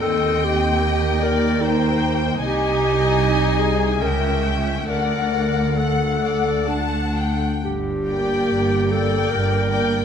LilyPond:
<<
  \new Staff \with { instrumentName = "Violin section" } { \time 3/4 \key g \minor \tempo 4 = 74 g''2 g''4 | aes''2 g''4 | fis''4 fis''4 fis''8. r16 | r8 g''4 g''4 g''8 | }
  \new Staff \with { instrumentName = "Violin section" } { \time 3/4 \key g \minor ees''4 ees''8 d''8 c''4 | ees''2 e''4 | d''4 fis''8 d''8 a''8 g''8 | r8 d''4 d''4 d''8 | }
  \new Staff \with { instrumentName = "Clarinet" } { \time 3/4 \key g \minor a'8 g'4 bes'8 ees'4 | g'4. aes'8 ais'8 r8 | bes'4 a'4 d'4 | g'4. a'8 bes'4 | }
  \new Staff \with { instrumentName = "Viola section" } { \time 3/4 \key g \minor c'4 bes4 bes4 | ees'2 cis'4 | a4 a4 a8. r16 | r8 bes4 bes4 bes8 | }
  \new Staff \with { instrumentName = "Cello section" } { \clef bass \time 3/4 \key g \minor ees,2. | c,2 cis,4 | d,2~ d,8. r16 | g,4 g,4 g,4 | }
  \new Staff \with { instrumentName = "Double bass section" } { \clef bass \time 3/4 \key g \minor ees,2. | c,2 cis,4 | d,2~ d,8. r16 | g,,4 g,,4 g,,4 | }
>>